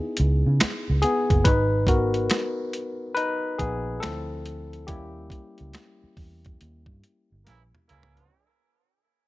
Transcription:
Already playing: B3 D#4 E4 G#4
0.17 C#2, closed hi-hat
0.46 C#3
0.60 finger snap, muted fingered electric bass stroke, snare, closed hi-hat
0.90 C#2
1.02 B3 G#4, closed hi-hat
1.30 F#1, kick, closed hi-hat
1.44 G#1 D#4 B4, kick, closed hi-hat
1.87 B3 F#4 A#4, kick, closed hi-hat
2.14 closed hi-hat
2.30 finger snap, snare, closed hi-hat
2.73 closed hi-hat
3.15 D#4 B4, closed hi-hat
3.58 A#1 B3 G#4, kick, closed hi-hat
4.00 F3 C4 E4 A4, finger snap, snare, closed hi-hat
4.05 D2
4.46 closed hi-hat
4.73 closed hi-hat
4.87 D#2 G3 A#3 C#4 E4 G4, kick, closed hi-hat
5.30 kick, closed hi-hat
5.58 C#2, closed hi-hat
5.74 finger snap, snare, closed hi-hat
6.04 muted fingered electric bass stroke
6.17 E2, kick, open hi-hat
6.45 kick, closed hi-hat
6.61 D#2, closed hi-hat
6.86 G2, kick
7.04 closed hi-hat
7.32 G1
7.45 A#1 C#3 E3 A#3 E4, snare, closed hi-hat
7.75 mid tom
7.88 C#2 C#3 E3 A#3 E4, closed hi-hat
8.03 floor tom
8.17 closed hi-hat

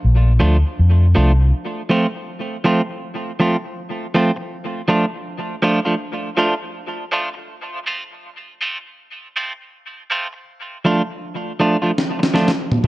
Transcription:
0.04 A#1
0.40 D2 F3 A3 D4 F4
0.79 F2
1.15 C2 F3 A3 D4 F4
1.89 F3 A3 C4 F4
2.64 F3 A3 C4 F4
3.40 F3 A3 C4 F4
4.14 F3 A3 C4 F4
4.36 muted clean electric guitar stroke
4.88 F3 A3 D4 F4
5.62 F3 A3 D4 F4
5.85 F3 A3 D4 F4
6.37 F3 A3 D4 F4
7.12 F3 A3 D4 F4
7.34 muted clean electric guitar stroke
7.86 F3 A3 C4 F4
8.61 F3 A3 C4 F4
9.36 F3 A3 C4 F4
10.10 F3 A3 C4 F4
10.33 muted clean electric guitar stroke
10.85 F3 A3 D4 F4
11.60 F3 A3 D4 F4
11.82 F3 A3 D4 F4
11.98 snare
12.19 muted clean electric guitar stroke, snare
12.34 F3 A3 D4 F4, snare
12.48 snare
12.72 mid tom
12.84 mid tom

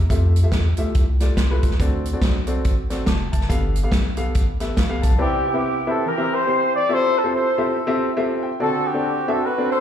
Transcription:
0.09 F2 A3 F4 G4 E5, kick, closed hi-hat
0.36 closed hi-hat
0.43 A3 F4 G4 E5
0.52 E2, kick, snare, closed hi-hat
0.77 D2 A3 F4 G4 E5, closed hi-hat
0.95 C2, kick, closed hi-hat
1.20 A3 F4 G4 D5, snare, closed hi-hat
1.37 C2 C6, kick, snare, closed hi-hat
1.50 A3 F4 G4 B4
1.63 C#2, kick, closed hi-hat
1.71 snare
1.79 D2 D3 C4 F#4 A4 D5, kick, closed hi-hat
2.05 closed hi-hat
2.13 C4 F#4 A4 D5
2.21 B1, kick, snare, closed hi-hat
2.47 C4 F#4 A4 D5, closed hi-hat
2.64 A1, kick, closed hi-hat
2.90 C4 F#4 A4 D5, snare, closed hi-hat
3.06 F1 A5 D6, kick, snare, closed hi-hat
3.32 F#1 E5 A5, kick, closed hi-hat
3.41 snare
3.49 G1 G2 B3 G4 A4 F5, kick, closed hi-hat
3.75 closed hi-hat
3.83 B3 G4 A4 F5
3.92 B1, kick, snare, closed hi-hat
4.17 B3 G4 A4 F5, closed hi-hat
4.35 A1, kick, closed hi-hat
4.60 B3 G4 A4 E5, snare, closed hi-hat
4.77 A#1 F5, kick, snare, closed hi-hat
4.89 B3 G4 A4 F5
5.02 B1 A5, kick, closed hi-hat
5.18 C3 B3 C4 E4 G4 B4 D5
5.46 B3 E4 G4
5.53 C4 E4 G4 B4 E5
5.87 C4 E4 G4 A4 B4 E5
6.05 E3 G4 A#4
6.18 C4 E4 G4 A#4 E5
6.31 G4 C5
6.47 C4 E4 G4 A#4 C5
6.75 D5
6.89 C4 E4 F4 G4 A4 C5 E5
7.17 A4
7.24 C4 F4 G4 A4 C5
7.33 E4 A4 C5
7.58 C4 F4 G4 A4 E5
7.87 C4 F4 G4 A4 E5
8.17 C4 F4 G4 A4 E5
8.43 G5
8.60 D3 C4 D4 F#4 A4 D5
8.85 C4 G4
8.94 C4 D4 F#4 A4 D5
9.27 C4 D4 F#4 A4 E5
9.45 F#4 B4
9.58 C4 D4 F#4 A4 D5
9.69 F#4 A4 C5

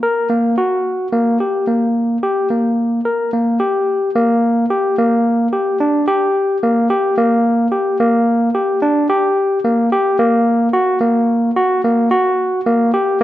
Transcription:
0.03 A#4
0.30 A#3
0.58 F#4
1.12 A#3
1.40 G4
1.68 A#3
2.23 G4
2.50 A#3
3.05 A#4
3.33 A#3
3.60 G4
4.15 A#3
4.70 G4
4.98 A#3
5.53 G4
5.80 D4
6.08 G4
6.63 A#3
6.90 G4
7.18 A#3
7.72 G4
8.00 A#3
8.55 G4
8.82 D4
9.10 G4
9.64 A#3
9.92 G4
10.19 A#3
10.73 F#4
11.01 A#3
11.56 F#4
11.84 A#3
12.11 F#4
12.66 A#3
12.94 G4

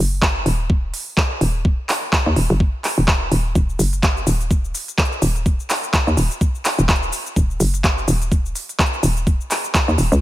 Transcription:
0.00 F#1
0.22 kick, clap
0.46 D#1, open hi-hat
0.70 kick
0.94 open hi-hat
1.17 kick, clap
1.41 D#1, open hi-hat
1.65 kick
1.89 clap, open hi-hat
2.13 kick, clap
2.26 D#2
2.36 D#1, open hi-hat
2.50 F#1
2.60 kick
2.84 clap, open hi-hat
2.98 D#1
3.08 kick, clap
3.32 D#1, open hi-hat
3.55 D#1, kick, closed hi-hat, shaker
3.69 shaker
3.79 F#1, open hi-hat, shaker
3.93 closed hi-hat, shaker
4.03 kick, clap, closed hi-hat, shaker
4.17 shaker
4.27 D#1, open hi-hat, shaker
4.41 closed hi-hat, shaker
4.51 kick, closed hi-hat, shaker
4.65 shaker
4.75 open hi-hat, shaker
4.88 closed hi-hat, shaker
4.98 kick, clap, closed hi-hat, shaker
5.05 closed hi-hat
5.12 shaker
5.22 D#1, open hi-hat, shaker
5.36 closed hi-hat, shaker
5.46 kick, closed hi-hat, shaker
5.60 shaker
5.70 clap, open hi-hat, shaker
5.83 closed hi-hat, shaker
5.93 kick, clap, closed hi-hat, shaker
6.07 D#2, shaker
6.17 D#1, open hi-hat, shaker
6.31 closed hi-hat, shaker
6.41 kick, closed hi-hat, shaker
6.55 shaker
6.65 clap, open hi-hat, shaker
6.79 D#1, closed hi-hat, shaker
6.89 kick, clap, closed hi-hat, shaker
6.96 closed hi-hat
7.03 shaker
7.13 open hi-hat, shaker
7.26 closed hi-hat, shaker
7.36 D#1, kick, closed hi-hat, shaker
7.50 shaker
7.60 F#1, open hi-hat, shaker
7.74 closed hi-hat, shaker
7.84 kick, clap, closed hi-hat, shaker
7.98 shaker
8.08 D#1, open hi-hat, shaker
8.22 closed hi-hat, shaker
8.32 kick, closed hi-hat, shaker
8.46 shaker
8.55 open hi-hat, shaker
8.69 closed hi-hat, shaker
8.79 kick, clap, closed hi-hat, shaker
8.86 closed hi-hat
8.93 shaker
9.03 D#1, open hi-hat, shaker
9.17 closed hi-hat, shaker
9.27 kick, closed hi-hat, shaker
9.41 shaker
9.51 clap, open hi-hat, shaker
9.64 closed hi-hat, shaker
9.74 kick, clap, closed hi-hat, shaker
9.88 D#2, shaker
9.98 D#1, open hi-hat, shaker
10.12 C#2, closed hi-hat, shaker

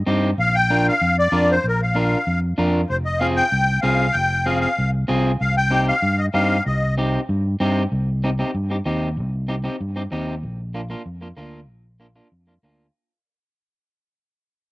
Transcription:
0.07 G2 C4 D#4 G4
0.38 A#1 F5
0.55 G5
0.70 D4 F4 A#4
0.88 F5
1.01 F2
1.19 D5
1.32 F2 D4 F4 A#4
1.51 C5
1.64 A#1 A#4
1.82 F5
1.95 D4 F4 A#4
2.27 F2
2.58 F2 D4 F4 A#4
2.90 F1 C5
3.05 D#5
3.19 C4 F4 G#4 F5
3.36 G5
3.52 C2
3.82 C2 C4 F4 G#4 F5
4.12 F1 G5
4.45 C4 F4 G#4 F5
4.60 F5
4.79 C2
5.08 C2 C4 F4 G#4
5.41 C2 F5
5.57 G5
5.71 C4 D#4 G4
5.88 F5
6.02 G2
6.19 D#5
6.34 G2 C4 D#4 G4 F5
6.66 C2 D#5
6.98 C4 D#4 G4
7.29 G2
7.60 G2 C4 D#4 G4
7.92 C2
8.24 C4 D#4 G4
8.39 C4 D#4 G4
8.55 G2
8.70 C4 D#4 G4
8.86 D#2 C4 D#4 G4
9.17 C2
9.48 C4 D#4 G4
9.64 C4 D#4 G4
9.81 G2
9.96 C4 D#4 G4
10.12 D#2 C4 D#4 G4
10.43 A#1
10.74 A#3 D4 F4
10.90 A#3 D4 F4
11.06 F2
11.21 A#3 D4 F4
11.37 D2 A#3 D4 F4
11.69 A#1
12.00 A#3 D4 F4
12.16 A#3 D4 F4
12.32 F2
12.47 A#3 D4 F4
12.63 D2 A#3 D4 F4

